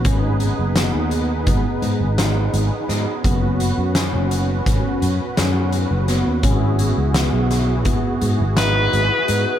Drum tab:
HH |xxxxxxxxx|xxxxxxxxx|xxxxxxxxx|
SD |--o---o-o|--o-o-o-o|--oo--o--|
BD |o---o----|o---o----|o---o----|